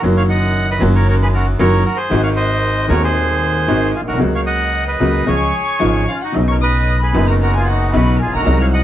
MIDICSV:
0, 0, Header, 1, 5, 480
1, 0, Start_track
1, 0, Tempo, 522648
1, 28, Time_signature, 4, 2, 24, 8
1, 3867, Tempo, 531915
1, 8041, End_track
2, 0, Start_track
2, 0, Title_t, "Violin"
2, 0, Program_c, 0, 40
2, 4836, Note_on_c, 0, 85, 90
2, 5522, Note_off_c, 0, 85, 0
2, 5559, Note_on_c, 0, 77, 67
2, 5669, Note_off_c, 0, 77, 0
2, 5678, Note_on_c, 0, 78, 65
2, 5787, Note_off_c, 0, 78, 0
2, 5915, Note_on_c, 0, 85, 76
2, 5970, Note_off_c, 0, 85, 0
2, 6035, Note_on_c, 0, 87, 84
2, 6370, Note_off_c, 0, 87, 0
2, 6380, Note_on_c, 0, 83, 77
2, 6609, Note_off_c, 0, 83, 0
2, 6630, Note_on_c, 0, 82, 73
2, 6685, Note_off_c, 0, 82, 0
2, 6761, Note_on_c, 0, 82, 83
2, 6869, Note_off_c, 0, 82, 0
2, 6880, Note_on_c, 0, 80, 78
2, 6981, Note_off_c, 0, 80, 0
2, 6986, Note_on_c, 0, 78, 74
2, 7212, Note_off_c, 0, 78, 0
2, 7228, Note_on_c, 0, 83, 73
2, 7424, Note_off_c, 0, 83, 0
2, 7439, Note_on_c, 0, 82, 51
2, 7467, Note_off_c, 0, 82, 0
2, 7473, Note_on_c, 0, 80, 77
2, 7583, Note_off_c, 0, 80, 0
2, 7593, Note_on_c, 0, 82, 79
2, 7813, Note_off_c, 0, 82, 0
2, 7828, Note_on_c, 0, 89, 89
2, 7881, Note_off_c, 0, 89, 0
2, 7941, Note_on_c, 0, 90, 90
2, 8041, Note_off_c, 0, 90, 0
2, 8041, End_track
3, 0, Start_track
3, 0, Title_t, "Bandoneon"
3, 0, Program_c, 1, 23
3, 155, Note_on_c, 1, 77, 104
3, 156, Note_on_c, 1, 73, 80
3, 207, Note_off_c, 1, 77, 0
3, 209, Note_off_c, 1, 73, 0
3, 269, Note_on_c, 1, 78, 127
3, 276, Note_on_c, 1, 75, 103
3, 608, Note_off_c, 1, 75, 0
3, 641, Note_off_c, 1, 78, 0
3, 643, Note_on_c, 1, 75, 105
3, 655, Note_on_c, 1, 71, 81
3, 748, Note_off_c, 1, 75, 0
3, 757, Note_off_c, 1, 71, 0
3, 876, Note_on_c, 1, 73, 100
3, 879, Note_on_c, 1, 70, 75
3, 983, Note_off_c, 1, 73, 0
3, 986, Note_off_c, 1, 70, 0
3, 997, Note_on_c, 1, 73, 102
3, 1008, Note_on_c, 1, 70, 81
3, 1049, Note_off_c, 1, 73, 0
3, 1058, Note_off_c, 1, 70, 0
3, 1125, Note_on_c, 1, 71, 108
3, 1132, Note_on_c, 1, 68, 82
3, 1175, Note_off_c, 1, 71, 0
3, 1181, Note_off_c, 1, 68, 0
3, 1228, Note_on_c, 1, 70, 99
3, 1243, Note_on_c, 1, 66, 70
3, 1336, Note_off_c, 1, 70, 0
3, 1347, Note_off_c, 1, 66, 0
3, 1462, Note_on_c, 1, 73, 110
3, 1465, Note_on_c, 1, 70, 84
3, 1687, Note_off_c, 1, 73, 0
3, 1688, Note_off_c, 1, 70, 0
3, 1701, Note_on_c, 1, 70, 103
3, 1709, Note_on_c, 1, 66, 80
3, 1801, Note_on_c, 1, 72, 111
3, 1807, Note_on_c, 1, 68, 85
3, 1815, Note_off_c, 1, 70, 0
3, 1819, Note_off_c, 1, 66, 0
3, 2036, Note_off_c, 1, 72, 0
3, 2039, Note_off_c, 1, 68, 0
3, 2046, Note_on_c, 1, 73, 84
3, 2048, Note_on_c, 1, 77, 102
3, 2105, Note_off_c, 1, 73, 0
3, 2106, Note_off_c, 1, 77, 0
3, 2169, Note_on_c, 1, 72, 106
3, 2169, Note_on_c, 1, 75, 126
3, 2623, Note_off_c, 1, 72, 0
3, 2656, Note_on_c, 1, 73, 110
3, 2662, Note_on_c, 1, 70, 81
3, 2672, Note_off_c, 1, 75, 0
3, 2772, Note_off_c, 1, 73, 0
3, 2775, Note_off_c, 1, 70, 0
3, 2789, Note_on_c, 1, 72, 113
3, 2790, Note_on_c, 1, 68, 83
3, 3590, Note_off_c, 1, 68, 0
3, 3590, Note_off_c, 1, 72, 0
3, 3620, Note_on_c, 1, 68, 94
3, 3631, Note_on_c, 1, 65, 74
3, 3675, Note_off_c, 1, 68, 0
3, 3684, Note_off_c, 1, 65, 0
3, 3739, Note_on_c, 1, 70, 94
3, 3746, Note_on_c, 1, 66, 74
3, 3849, Note_off_c, 1, 70, 0
3, 3855, Note_off_c, 1, 66, 0
3, 3990, Note_on_c, 1, 73, 73
3, 3997, Note_on_c, 1, 77, 103
3, 4043, Note_off_c, 1, 73, 0
3, 4048, Note_off_c, 1, 77, 0
3, 4095, Note_on_c, 1, 75, 91
3, 4100, Note_on_c, 1, 78, 120
3, 4435, Note_off_c, 1, 75, 0
3, 4438, Note_off_c, 1, 78, 0
3, 4470, Note_on_c, 1, 71, 81
3, 4474, Note_on_c, 1, 75, 99
3, 4805, Note_off_c, 1, 71, 0
3, 4831, Note_on_c, 1, 73, 102
3, 4834, Note_on_c, 1, 68, 81
3, 4842, Note_off_c, 1, 75, 0
3, 5521, Note_off_c, 1, 68, 0
3, 5559, Note_on_c, 1, 65, 81
3, 5566, Note_on_c, 1, 61, 62
3, 5578, Note_off_c, 1, 73, 0
3, 5673, Note_off_c, 1, 61, 0
3, 5682, Note_off_c, 1, 65, 0
3, 5692, Note_on_c, 1, 66, 88
3, 5700, Note_on_c, 1, 63, 66
3, 5798, Note_off_c, 1, 66, 0
3, 5804, Note_off_c, 1, 63, 0
3, 5937, Note_on_c, 1, 73, 82
3, 5944, Note_on_c, 1, 70, 69
3, 5987, Note_off_c, 1, 73, 0
3, 5992, Note_off_c, 1, 70, 0
3, 6050, Note_on_c, 1, 71, 85
3, 6055, Note_on_c, 1, 75, 116
3, 6378, Note_off_c, 1, 71, 0
3, 6380, Note_off_c, 1, 75, 0
3, 6411, Note_on_c, 1, 68, 71
3, 6411, Note_on_c, 1, 71, 90
3, 6626, Note_off_c, 1, 68, 0
3, 6626, Note_off_c, 1, 71, 0
3, 6652, Note_on_c, 1, 66, 66
3, 6652, Note_on_c, 1, 70, 85
3, 6702, Note_off_c, 1, 66, 0
3, 6702, Note_off_c, 1, 70, 0
3, 6771, Note_on_c, 1, 70, 88
3, 6773, Note_on_c, 1, 66, 74
3, 6874, Note_off_c, 1, 70, 0
3, 6875, Note_off_c, 1, 66, 0
3, 6904, Note_on_c, 1, 65, 71
3, 6904, Note_on_c, 1, 68, 90
3, 7001, Note_off_c, 1, 65, 0
3, 7001, Note_off_c, 1, 68, 0
3, 7008, Note_on_c, 1, 66, 83
3, 7018, Note_on_c, 1, 63, 66
3, 7223, Note_off_c, 1, 66, 0
3, 7228, Note_off_c, 1, 63, 0
3, 7249, Note_on_c, 1, 66, 73
3, 7254, Note_on_c, 1, 71, 97
3, 7435, Note_off_c, 1, 66, 0
3, 7438, Note_off_c, 1, 71, 0
3, 7451, Note_on_c, 1, 70, 68
3, 7476, Note_off_c, 1, 70, 0
3, 7481, Note_on_c, 1, 68, 96
3, 7486, Note_on_c, 1, 65, 71
3, 7590, Note_off_c, 1, 65, 0
3, 7599, Note_off_c, 1, 68, 0
3, 7605, Note_on_c, 1, 70, 96
3, 7606, Note_on_c, 1, 66, 75
3, 7820, Note_off_c, 1, 66, 0
3, 7834, Note_on_c, 1, 73, 78
3, 7842, Note_off_c, 1, 70, 0
3, 7842, Note_on_c, 1, 77, 95
3, 7886, Note_off_c, 1, 73, 0
3, 7892, Note_off_c, 1, 77, 0
3, 7947, Note_on_c, 1, 78, 124
3, 7957, Note_on_c, 1, 75, 97
3, 8041, Note_off_c, 1, 75, 0
3, 8041, Note_off_c, 1, 78, 0
3, 8041, End_track
4, 0, Start_track
4, 0, Title_t, "Upright piano"
4, 0, Program_c, 2, 0
4, 15, Note_on_c, 2, 51, 78
4, 28, Note_on_c, 2, 54, 90
4, 29, Note_on_c, 2, 42, 86
4, 39, Note_on_c, 2, 58, 73
4, 50, Note_on_c, 2, 66, 82
4, 704, Note_off_c, 2, 51, 0
4, 715, Note_off_c, 2, 42, 0
4, 717, Note_off_c, 2, 54, 0
4, 718, Note_on_c, 2, 51, 78
4, 720, Note_off_c, 2, 58, 0
4, 725, Note_off_c, 2, 66, 0
4, 737, Note_on_c, 2, 54, 101
4, 742, Note_on_c, 2, 42, 97
4, 745, Note_on_c, 2, 58, 76
4, 760, Note_on_c, 2, 66, 97
4, 1415, Note_off_c, 2, 51, 0
4, 1427, Note_off_c, 2, 42, 0
4, 1427, Note_off_c, 2, 54, 0
4, 1429, Note_off_c, 2, 58, 0
4, 1436, Note_off_c, 2, 66, 0
4, 1462, Note_on_c, 2, 51, 91
4, 1462, Note_on_c, 2, 54, 105
4, 1464, Note_on_c, 2, 42, 103
4, 1467, Note_on_c, 2, 58, 74
4, 1469, Note_on_c, 2, 66, 92
4, 1665, Note_off_c, 2, 51, 0
4, 1666, Note_off_c, 2, 42, 0
4, 1667, Note_off_c, 2, 54, 0
4, 1667, Note_off_c, 2, 58, 0
4, 1668, Note_off_c, 2, 66, 0
4, 1924, Note_on_c, 2, 51, 83
4, 1934, Note_on_c, 2, 56, 75
4, 1938, Note_on_c, 2, 32, 101
4, 1939, Note_on_c, 2, 44, 98
4, 1950, Note_on_c, 2, 60, 74
4, 1956, Note_on_c, 2, 66, 98
4, 2619, Note_off_c, 2, 51, 0
4, 2624, Note_off_c, 2, 56, 0
4, 2626, Note_off_c, 2, 32, 0
4, 2626, Note_off_c, 2, 44, 0
4, 2631, Note_off_c, 2, 60, 0
4, 2635, Note_off_c, 2, 66, 0
4, 2641, Note_on_c, 2, 51, 83
4, 2651, Note_on_c, 2, 56, 73
4, 2654, Note_on_c, 2, 27, 97
4, 2660, Note_on_c, 2, 39, 98
4, 2664, Note_on_c, 2, 60, 80
4, 2673, Note_on_c, 2, 66, 93
4, 3336, Note_off_c, 2, 51, 0
4, 3341, Note_off_c, 2, 56, 0
4, 3343, Note_off_c, 2, 27, 0
4, 3346, Note_off_c, 2, 39, 0
4, 3348, Note_off_c, 2, 60, 0
4, 3353, Note_off_c, 2, 66, 0
4, 3374, Note_on_c, 2, 56, 70
4, 3375, Note_on_c, 2, 51, 84
4, 3381, Note_on_c, 2, 60, 75
4, 3383, Note_on_c, 2, 32, 97
4, 3383, Note_on_c, 2, 44, 92
4, 3386, Note_on_c, 2, 66, 88
4, 3581, Note_off_c, 2, 51, 0
4, 3581, Note_off_c, 2, 56, 0
4, 3584, Note_off_c, 2, 60, 0
4, 3585, Note_off_c, 2, 32, 0
4, 3586, Note_off_c, 2, 44, 0
4, 3587, Note_off_c, 2, 66, 0
4, 3677, Note_on_c, 2, 34, 55
4, 3741, Note_off_c, 2, 34, 0
4, 3741, Note_on_c, 2, 35, 64
4, 3789, Note_on_c, 2, 36, 81
4, 3803, Note_off_c, 2, 35, 0
4, 3833, Note_on_c, 2, 49, 76
4, 3846, Note_off_c, 2, 49, 0
4, 3847, Note_on_c, 2, 54, 67
4, 3848, Note_on_c, 2, 37, 89
4, 3854, Note_on_c, 2, 49, 87
4, 3858, Note_off_c, 2, 36, 0
4, 3858, Note_on_c, 2, 58, 70
4, 3871, Note_on_c, 2, 66, 83
4, 4540, Note_off_c, 2, 54, 0
4, 4541, Note_off_c, 2, 37, 0
4, 4544, Note_off_c, 2, 49, 0
4, 4546, Note_off_c, 2, 58, 0
4, 4552, Note_off_c, 2, 66, 0
4, 4577, Note_on_c, 2, 37, 91
4, 4580, Note_on_c, 2, 54, 67
4, 4581, Note_on_c, 2, 49, 94
4, 4581, Note_on_c, 2, 58, 70
4, 4587, Note_on_c, 2, 66, 81
4, 4784, Note_off_c, 2, 37, 0
4, 4786, Note_off_c, 2, 54, 0
4, 4786, Note_off_c, 2, 58, 0
4, 4788, Note_off_c, 2, 49, 0
4, 4789, Note_off_c, 2, 66, 0
4, 4813, Note_on_c, 2, 37, 87
4, 4815, Note_on_c, 2, 49, 85
4, 4816, Note_on_c, 2, 65, 78
4, 4818, Note_on_c, 2, 53, 66
4, 4819, Note_on_c, 2, 56, 68
4, 5023, Note_off_c, 2, 37, 0
4, 5025, Note_off_c, 2, 49, 0
4, 5025, Note_off_c, 2, 65, 0
4, 5026, Note_off_c, 2, 53, 0
4, 5026, Note_off_c, 2, 56, 0
4, 5295, Note_on_c, 2, 53, 65
4, 5296, Note_on_c, 2, 32, 87
4, 5297, Note_on_c, 2, 65, 84
4, 5300, Note_on_c, 2, 44, 87
4, 5300, Note_on_c, 2, 56, 71
4, 5301, Note_on_c, 2, 49, 76
4, 5507, Note_off_c, 2, 32, 0
4, 5507, Note_off_c, 2, 53, 0
4, 5508, Note_off_c, 2, 65, 0
4, 5509, Note_off_c, 2, 56, 0
4, 5510, Note_off_c, 2, 44, 0
4, 5510, Note_off_c, 2, 49, 0
4, 5772, Note_on_c, 2, 49, 74
4, 5780, Note_on_c, 2, 54, 70
4, 5788, Note_on_c, 2, 35, 81
4, 5788, Note_on_c, 2, 47, 82
4, 5798, Note_on_c, 2, 59, 68
4, 5808, Note_on_c, 2, 63, 82
4, 6467, Note_off_c, 2, 49, 0
4, 6472, Note_off_c, 2, 54, 0
4, 6476, Note_off_c, 2, 35, 0
4, 6476, Note_off_c, 2, 47, 0
4, 6480, Note_off_c, 2, 59, 0
4, 6486, Note_off_c, 2, 63, 0
4, 6502, Note_on_c, 2, 49, 82
4, 6509, Note_on_c, 2, 54, 68
4, 6514, Note_on_c, 2, 42, 95
4, 6517, Note_on_c, 2, 30, 94
4, 6518, Note_on_c, 2, 59, 73
4, 6537, Note_on_c, 2, 63, 84
4, 7189, Note_off_c, 2, 49, 0
4, 7193, Note_off_c, 2, 54, 0
4, 7195, Note_off_c, 2, 42, 0
4, 7197, Note_off_c, 2, 30, 0
4, 7197, Note_off_c, 2, 59, 0
4, 7207, Note_off_c, 2, 63, 0
4, 7225, Note_on_c, 2, 35, 94
4, 7226, Note_on_c, 2, 54, 73
4, 7227, Note_on_c, 2, 49, 83
4, 7228, Note_on_c, 2, 59, 73
4, 7230, Note_on_c, 2, 47, 102
4, 7235, Note_on_c, 2, 63, 86
4, 7429, Note_off_c, 2, 35, 0
4, 7430, Note_off_c, 2, 49, 0
4, 7430, Note_off_c, 2, 54, 0
4, 7431, Note_off_c, 2, 59, 0
4, 7432, Note_off_c, 2, 47, 0
4, 7434, Note_off_c, 2, 63, 0
4, 7521, Note_on_c, 2, 33, 57
4, 7582, Note_on_c, 2, 34, 71
4, 7586, Note_off_c, 2, 33, 0
4, 7641, Note_on_c, 2, 35, 81
4, 7645, Note_off_c, 2, 34, 0
4, 7673, Note_on_c, 2, 48, 73
4, 7686, Note_on_c, 2, 54, 72
4, 7687, Note_off_c, 2, 48, 0
4, 7692, Note_on_c, 2, 36, 89
4, 7693, Note_on_c, 2, 48, 95
4, 7699, Note_on_c, 2, 56, 73
4, 7705, Note_off_c, 2, 35, 0
4, 7708, Note_on_c, 2, 63, 79
4, 8041, Note_off_c, 2, 36, 0
4, 8041, Note_off_c, 2, 48, 0
4, 8041, Note_off_c, 2, 54, 0
4, 8041, Note_off_c, 2, 56, 0
4, 8041, Note_off_c, 2, 63, 0
4, 8041, End_track
5, 0, Start_track
5, 0, Title_t, "Upright bass"
5, 0, Program_c, 3, 32
5, 35, Note_on_c, 3, 30, 106
5, 717, Note_off_c, 3, 30, 0
5, 751, Note_on_c, 3, 30, 114
5, 1432, Note_off_c, 3, 30, 0
5, 1467, Note_on_c, 3, 30, 107
5, 1667, Note_off_c, 3, 30, 0
5, 1940, Note_on_c, 3, 32, 111
5, 2627, Note_off_c, 3, 32, 0
5, 2665, Note_on_c, 3, 39, 109
5, 3348, Note_off_c, 3, 39, 0
5, 3382, Note_on_c, 3, 32, 98
5, 3585, Note_off_c, 3, 32, 0
5, 3687, Note_on_c, 3, 34, 53
5, 3746, Note_off_c, 3, 34, 0
5, 3754, Note_on_c, 3, 35, 67
5, 3807, Note_off_c, 3, 35, 0
5, 3813, Note_on_c, 3, 36, 78
5, 3864, Note_off_c, 3, 36, 0
5, 3869, Note_on_c, 3, 37, 97
5, 4551, Note_off_c, 3, 37, 0
5, 4587, Note_on_c, 3, 37, 101
5, 4789, Note_off_c, 3, 37, 0
5, 4838, Note_on_c, 3, 37, 96
5, 5036, Note_off_c, 3, 37, 0
5, 5324, Note_on_c, 3, 32, 94
5, 5521, Note_off_c, 3, 32, 0
5, 5805, Note_on_c, 3, 35, 93
5, 6484, Note_off_c, 3, 35, 0
5, 6521, Note_on_c, 3, 30, 103
5, 7199, Note_off_c, 3, 30, 0
5, 7242, Note_on_c, 3, 35, 99
5, 7438, Note_off_c, 3, 35, 0
5, 7533, Note_on_c, 3, 33, 58
5, 7592, Note_off_c, 3, 33, 0
5, 7596, Note_on_c, 3, 34, 67
5, 7649, Note_off_c, 3, 34, 0
5, 7655, Note_on_c, 3, 35, 80
5, 7702, Note_off_c, 3, 35, 0
5, 7707, Note_on_c, 3, 36, 103
5, 8041, Note_off_c, 3, 36, 0
5, 8041, End_track
0, 0, End_of_file